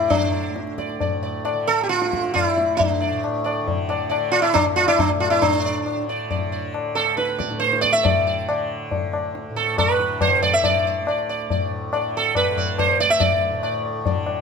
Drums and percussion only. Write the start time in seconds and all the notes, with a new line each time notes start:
0.10 tabla tin, tabla ge
0.56 tabla te
0.67 tabla te
0.78 tabla ke
0.89 tabla te
1.00 tabla tin, tabla ge
1.45 tabla na
1.90 tabla te
2.02 tabla te
2.13 tabla ke
2.24 tabla te
2.36 tabla na, tabla ge
2.58 tabla te
2.80 tabla tin, tabla ge
3.24 tabla na
3.46 tabla na
3.68 tabla tin, tabla ge
3.90 tabla na
4.12 tabla na
4.33 tabla na
4.44 tabla na
4.55 tabla na, tabla ge
4.77 tabla na
4.88 tabla na
4.99 tabla na, tabla ge
5.21 tabla na
5.32 tabla na
5.42 tabla tin, tabla ge
5.86 tabla na
6.31 tabla tin, tabla ge
6.74 tabla na
6.96 tabla na
7.18 tabla te
7.29 tabla te
7.40 tabla ke
7.51 tabla te
7.62 tabla te
7.73 tabla te
7.84 tabla ke
7.94 tabla te
8.05 tabla tin, tabla ge
8.49 tabla na
8.91 tabla tin, tabla ge
9.13 tabla na
9.35 tabla te
9.56 tabla te
9.78 tabla na, tabla ge
10.00 tabla te
10.21 tabla na, tabla ge
10.43 tabla ge
10.64 tabla tin, tabla ge
11.07 tabla na
11.50 tabla tin, tabla ge
11.93 tabla na
12.35 tabla na, tabla ge
12.57 tabla ge
12.78 tabla na, tabla ge
12.99 tabla te
13.20 tabla tin, tabla ge
13.63 tabla na
14.06 tabla tin, tabla ge
14.26 tabla na